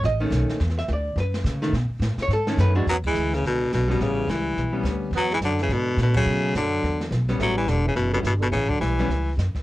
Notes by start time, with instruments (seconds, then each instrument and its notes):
0.03 upright bass A1, hollow-body jazz guitar D#5, brush sweep, snare
0.20 hollow-body jazz guitar D#3 A3 C#4
0.31 upright bass B1, snare, hi-hat pedal
0.49 snare
0.60 upright bass E2, brush sweep, snare
0.69 snare
0.79 hollow-body jazz guitar E5, snare
0.88 upright bass D2, snare, hi-hat pedal
0.93 hollow-body jazz guitar D5
1.16 upright bass F#2, brush sweep, snare
1.20 hollow-body jazz guitar B4
1.34 snare
1.44 upright bass C#3, snare, hi-hat pedal
1.62 hollow-body jazz guitar D#3 A3, snare
1.73 upright bass B2, brush sweep, snare
1.90 muted upright bass stroke
2.00 upright bass A2, snare, hi-hat pedal
2.17 muted upright bass stroke, snare
2.22 hollow-body jazz guitar C#5
2.28 upright bass G#2, brush sweep, snare
2.33 hollow-body jazz guitar A4
2.47 hollow-body jazz guitar D#3 A3 C#4, snare
2.58 upright bass F#2, hollow-body jazz guitar B4, snare, hi-hat pedal
2.75 hollow-body jazz guitar E3 G#3 D4 F#4
2.86 upright bass E2, baritone saxophone F#3, tenor saxophone B3, brush sweep, snare
3.04 baritone saxophone E3, tenor saxophone G#3, kick, ride
3.15 upright bass D2, hi-hat pedal
3.33 baritone saxophone C#3, tenor saxophone E3, snare
3.43 upright bass C#2, baritone saxophone B2, tenor saxophone D3, brush sweep, snare
3.71 upright bass B1, baritone saxophone B2, tenor saxophone D3, snare, hi-hat pedal
3.88 baritone saxophone B2, tenor saxophone D3, hollow-body jazz guitar G3 B3 C#4
3.98 upright bass A1, tenor saxophone E3, brush sweep, snare
4.02 baritone saxophone C#3
4.27 upright bass C#2, baritone saxophone E3, tenor saxophone G3, snare, hi-hat pedal
4.56 upright bass B1, brush sweep, snare
4.72 hollow-body jazz guitar G3 B3 C#4
4.83 upright bass D2, snare, hi-hat pedal
5.11 upright bass E2, brush sweep, snare
5.15 baritone saxophone F#3, tenor saxophone B3
5.30 baritone saxophone E3, tenor saxophone G#3, snare
5.40 upright bass F#2, tenor saxophone F#3, snare, hi-hat pedal
5.45 baritone saxophone D3
5.59 baritone saxophone C#3, tenor saxophone E3, snare
5.68 upright bass G#2, tenor saxophone D3, brush sweep, snare
5.73 baritone saxophone B2
5.97 upright bass A#2, tenor saxophone D3, snare, hi-hat pedal
6.02 baritone saxophone B2
6.14 baritone saxophone C#3, hollow-body jazz guitar F#3 A3, tenor saxophone F#3, kick, ride
6.26 upright bass B2, brush sweep
6.54 upright bass F#2, baritone saxophone D3, tenor saxophone F#3, snare, hi-hat pedal
6.83 upright bass E2, brush sweep, snare
7.01 snare
7.11 upright bass B1, snare, hi-hat pedal
7.29 hollow-body jazz guitar G3 B3 C#4, snare
7.38 upright bass A1, tenor saxophone A3, brush sweep, snare
7.43 baritone saxophone F#3
7.56 baritone saxophone E3, tenor saxophone G3
7.67 upright bass E1, baritone saxophone D3, tenor saxophone G3, snare, hi-hat pedal
7.84 tenor saxophone E3
7.88 baritone saxophone C#3
7.94 upright bass F#1, baritone saxophone B2, tenor saxophone E3, brush sweep, snare
8.12 baritone saxophone B2, tenor saxophone D3, hollow-body jazz guitar G3 B3 C#4
8.23 upright bass G1, baritone saxophone B2, tenor saxophone E3, snare, hi-hat pedal
8.40 baritone saxophone B2, tenor saxophone D3
8.50 upright bass A1, baritone saxophone C#3, tenor saxophone E3, brush sweep, snare
8.67 baritone saxophone D3, tenor saxophone F#3, kick
8.79 upright bass B1, baritone saxophone E3, tenor saxophone G3, snare, hi-hat pedal
8.99 hollow-body jazz guitar G3 B3 C#4, snare
9.08 upright bass C#2, brush sweep, snare
9.37 upright bass F#2, snare, hi-hat pedal
9.55 muted upright bass stroke, kick, snare